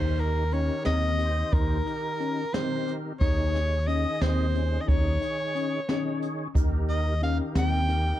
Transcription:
0.00 0.69 D#2 medium
0.00 0.44 D#3 medium
0.00 0.22 D#4 medium
0.00 0.44 D#4 medium
0.00 0.44 G4 medium
0.00 0.44 A#4 medium
0.00 0.21 C5 medium
0.17 0.55 A#4 medium
0.17 closed hi-hat medium
0.51 1.11 D#3 medium
0.51 0.72 C#4 medium
0.51 1.11 D#4 medium
0.51 1.12 G4 medium
0.51 1.12 A#4 medium
0.51 0.85 C#5 medium
0.51 closed hi-hat medium
0.85 1.42 D#2 medium
0.85 1.24 C4 medium
0.85 1.55 D#5 loud
0.85 snare medium
0.85 closed hi-hat medium
1.17 1.77 D#3 medium
1.17 1.78 D#4 medium
1.17 1.78 G4 medium
1.17 1.78 C5 medium
1.17 closed hi-hat medium
1.53 1.81 D#2 medium
1.53 1.91 D#4 medium
1.53 2.55 A#4 medium
1.53 kick loud
1.53 closed hi-hat medium
1.85 2.45 D#3 medium
1.85 2.45 D#4 medium
1.85 2.45 G4 medium
1.85 2.46 A#4 medium
1.85 closed hi-hat soft
2.20 2.39 C#4 medium
2.20 closed hi-hat medium
2.53 3.12 D#3 medium
2.53 2.91 C4 medium
2.53 3.13 D#4 medium
2.53 3.13 G4 medium
2.53 3.13 A#4 medium
2.53 2.94 C5 medium
2.53 snare loud
2.53 closed hi-hat medium
2.88 closed hi-hat medium
3.19 4.04 D#2 medium
3.19 3.79 D#3 medium
3.19 3.80 D#4 medium
3.19 3.58 D#4 medium
3.19 3.80 G#4 medium
3.19 3.89 C#5 medium
3.19 3.80 C#5 medium
3.19 kick medium
3.19 closed hi-hat medium
3.55 snare soft
3.55 closed hi-hat medium
3.87 4.46 D#3 medium
3.87 4.06 C#4 medium
3.87 4.46 D#4 medium
3.87 4.47 G#4 medium
3.87 4.23 D#5 medium
3.87 4.47 D#5 medium
3.87 closed hi-hat medium
4.21 4.77 D#2 medium
4.21 4.59 C4 medium
4.21 4.83 C5 medium
4.21 snare medium
4.21 closed hi-hat medium
4.53 5.13 D#3 medium
4.53 5.13 C#4 medium
4.53 5.13 D#4 medium
4.53 5.13 G#4 medium
4.53 closed hi-hat medium
4.81 4.90 D#5 medium
4.88 5.16 D#2 medium
4.88 5.25 D#4 medium
4.88 6.22 C#5 medium
4.88 kick loud
4.88 closed hi-hat medium
5.20 5.80 D#3 medium
5.20 5.80 D#4 medium
5.20 5.80 G#4 medium
5.20 5.81 C#5 medium
5.20 closed hi-hat medium
5.55 5.74 C#4 medium
5.55 closed hi-hat medium
5.88 6.47 D#3 medium
5.88 6.26 C#4 medium
5.88 6.48 D#4 medium
5.88 6.48 G#4 medium
5.88 6.48 C#5 loud
5.88 snare medium
5.88 closed hi-hat medium
6.22 closed hi-hat medium
6.55 7.39 D#2 medium
6.55 7.14 D#3 medium
6.55 7.14 D#4 medium
6.55 6.93 D#4 medium
6.55 7.14 G4 medium
6.55 7.15 A#4 loud
6.55 kick loud
6.55 closed hi-hat medium
6.55 shaker soft
6.89 7.20 D#5 medium
6.89 closed hi-hat soft
6.89 shaker soft
7.21 7.81 D#3 medium
7.21 7.41 C#4 medium
7.21 7.81 D#4 medium
7.21 7.81 G4 medium
7.21 7.82 A#4 medium
7.21 7.38 F5 medium
7.21 closed hi-hat medium
7.55 8.11 D#2 medium
7.55 7.93 C4 medium
7.55 8.20 G5 loud
7.55 snare medium
7.55 closed hi-hat medium
7.55 shaker soft
7.88 8.20 D#3 medium
7.88 8.20 D#4 medium
7.88 8.20 G4 medium
7.88 8.20 A#4 medium
7.88 closed hi-hat medium

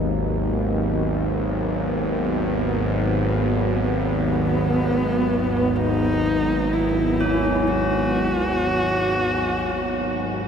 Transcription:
0.00 10.48 G#1 medium
0.00 10.48 D#2 medium
0.00 10.48 G#2 medium
0.00 10.48 F#3 medium
0.00 10.48 B3 medium
3.89 5.78 B3 medium
5.77 6.75 D#4 loud
6.73 7.69 E4 medium
7.21 10.48 C#4 medium
7.68 10.48 F#4 medium

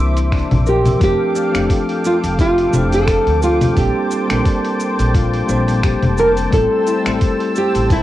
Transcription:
0.00 0.40 C2 medium
0.00 1.03 E3 medium
0.00 1.03 A#3 medium
0.00 1.01 C4 medium
0.00 0.31 D4 medium
0.00 1.01 D4 medium
0.00 1.76 E4 loud
0.00 1.02 G4 medium
0.00 0.11 A4 medium
0.00 0.29 A#4 medium
0.00 0.97 C5 medium
0.00 0.98 E5 medium
0.00 1.03 A5 medium
0.00 0.99 D6 medium
0.17 open hi-hat soft
0.17 shaker soft
0.32 1.35 D4 medium
0.32 finger snap medium
0.32 kick medium
0.32 open hi-hat medium
0.32 shaker soft
0.51 0.92 A#1 medium
0.51 open hi-hat soft
0.51 low conga medium
0.66 1.00 G4 medium
0.66 2.78 A#4 medium
0.66 shaker medium
0.86 open hi-hat soft
0.86 low conga medium
0.86 shaker soft
0.99 1.13 F1 loud
0.99 1.49 F3 medium
0.99 1.50 A3 medium
0.99 1.50 C4 medium
0.99 1.50 D4 medium
0.99 1.50 G4 loud
0.99 3.75 A4 medium
0.99 3.74 F5 medium
0.99 8.03 G5 medium
0.99 6.49 D6 medium
0.99 kick loud
0.99 open hi-hat medium
0.99 shaker soft
1.03 2.02 G4 medium
1.35 4.15 D4 medium
1.35 shaker medium
1.52 1.65 F1 medium
1.52 2.68 F3 medium
1.52 2.69 A3 medium
1.52 2.70 C4 medium
1.52 2.70 D4 medium
1.52 finger snap medium
1.52 open hi-hat soft
1.52 shaker soft
1.57 2.71 A4 medium
1.70 4.11 F4 medium
1.70 kick loud
1.70 open hi-hat medium
1.70 shaker soft
1.89 open hi-hat soft
2.04 2.15 F4 medium
2.04 shaker medium
2.24 2.65 F1 medium
2.24 open hi-hat soft
2.24 shaker soft
2.39 2.81 F4 medium
2.39 3.42 G4 loud
2.39 kick loud
2.39 open hi-hat medium
2.39 shaker soft
2.58 open hi-hat soft
2.71 3.16 F1 medium
2.71 3.72 F3 medium
2.71 3.72 A3 medium
2.71 3.73 C4 medium
2.71 3.74 D4 medium
2.71 low conga medium
2.71 shaker medium
2.75 3.74 C5 medium
2.81 2.94 E4 medium
2.92 3.43 A4 loud
2.92 open hi-hat soft
2.92 shaker soft
3.08 5.27 A4 loud
3.08 finger snap medium
3.08 kick loud
3.08 open hi-hat medium
3.08 shaker soft
3.27 3.68 D2 medium
3.27 open hi-hat soft
3.42 3.78 F4 medium
3.42 5.78 G4 medium
3.42 shaker medium
3.61 open hi-hat soft
3.61 low conga medium
3.61 shaker soft
3.76 3.89 A#1 loud
3.76 4.25 G3 medium
3.76 4.26 A#3 medium
3.76 4.26 C4 medium
3.76 4.26 D4 medium
3.76 5.11 G4 medium
3.76 4.26 A4 loud
3.76 6.50 C5 medium
3.76 8.03 A5 medium
3.76 kick loud
3.76 open hi-hat medium
3.76 shaker soft
4.11 5.14 F4 medium
4.11 shaker medium
4.28 4.40 A#1 medium
4.28 5.44 G3 medium
4.28 5.45 A#3 medium
4.28 5.45 C4 medium
4.28 5.46 D4 medium
4.28 finger snap medium
4.28 open hi-hat soft
4.28 shaker soft
4.33 5.47 A#4 medium
4.45 7.26 D4 medium
4.45 kick loud
4.45 open hi-hat medium
4.45 shaker soft
4.65 open hi-hat soft
4.80 shaker medium
4.99 5.41 A#1 medium
4.99 open hi-hat soft
4.99 shaker soft
5.14 6.93 F4 loud
5.14 kick loud
5.14 open hi-hat medium
5.14 shaker soft
5.33 open hi-hat soft
5.46 5.92 A#1 medium
5.46 6.48 G3 medium
5.46 6.48 A#3 medium
5.46 6.49 C4 medium
5.46 6.49 D4 medium
5.46 shaker medium
5.51 6.50 C5 loud
5.68 open hi-hat soft
5.68 shaker soft
5.83 7.21 G4 loud
5.83 finger snap medium
5.83 kick loud
5.83 open hi-hat medium
5.83 shaker soft
6.03 6.44 F1 loud
6.03 open hi-hat soft
6.03 low conga medium
6.17 6.29 A#4 loud
6.17 7.63 A5 medium
6.17 shaker medium
6.37 open hi-hat soft
6.37 shaker soft
6.51 6.65 A1 loud
6.51 7.01 G3 medium
6.51 7.01 A3 medium
6.51 7.01 C4 medium
6.51 7.02 E4 medium
6.51 7.02 A4 loud
6.51 7.53 A4 loud
6.51 8.03 C5 medium
6.51 8.03 E6 medium
6.51 kick loud
6.51 open hi-hat medium
6.51 shaker soft
6.87 8.03 E4 medium
6.87 shaker medium
7.03 7.16 A1 medium
7.03 8.03 G3 medium
7.03 8.03 A3 medium
7.03 8.03 C4 medium
7.03 8.03 E4 medium
7.03 finger snap medium
7.03 open hi-hat soft
7.03 shaker soft
7.08 8.03 C5 medium
7.21 8.03 G4 medium
7.21 kick loud
7.21 open hi-hat medium
7.21 shaker soft
7.40 open hi-hat soft
7.56 7.89 G4 medium
7.56 shaker medium
7.75 8.03 A1 medium
7.75 open hi-hat soft
7.75 shaker soft
7.90 8.03 E4 loud
7.90 8.03 A4 loud
7.90 kick loud
7.90 open hi-hat medium
7.90 shaker soft

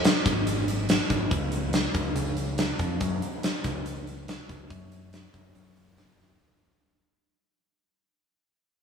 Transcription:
0.04 snare loud
0.04 closed hi-hat medium
0.25 0.99 G#1 medium
0.25 kick medium
0.25 closed hi-hat medium
0.47 closed hi-hat medium
0.68 closed hi-hat medium
0.89 snare loud
0.89 closed hi-hat medium
1.10 1.28 G#1 medium
1.10 kick medium
1.10 closed hi-hat medium
1.31 1.86 C#2 medium
1.31 kick loud
1.31 closed hi-hat medium
1.52 closed hi-hat medium
1.73 snare loud
1.73 closed hi-hat medium
1.94 2.13 C#2 medium
1.94 kick medium
1.94 closed hi-hat medium
2.15 2.71 C#2 medium
2.15 closed hi-hat medium
2.37 closed hi-hat medium
2.58 snare loud
2.58 closed hi-hat medium
2.79 2.98 F2 medium
2.79 kick medium
2.79 closed hi-hat medium
3.01 3.19 F#2 medium
3.01 kick loud
3.01 closed hi-hat medium
3.22 closed hi-hat medium
3.43 snare loud
3.43 closed hi-hat medium
3.64 4.38 C#2 medium
3.64 kick medium
3.64 closed hi-hat medium
3.86 closed hi-hat medium
4.07 closed hi-hat soft
4.28 snare loud
4.28 closed hi-hat medium
4.49 4.67 C#2 medium
4.49 kick medium
4.49 closed hi-hat soft
4.70 5.25 F#2 medium
4.70 kick loud
4.70 closed hi-hat medium
4.92 closed hi-hat medium
5.13 snare medium
5.13 closed hi-hat medium
5.34 5.52 F#2 medium
5.34 kick medium
5.34 closed hi-hat soft
5.55 6.10 F#2 medium
5.55 closed hi-hat medium
5.76 closed hi-hat medium
5.97 snare medium
5.97 closed hi-hat medium
6.18 6.36 F#2 medium
6.18 snare soft
6.29 floor tom medium

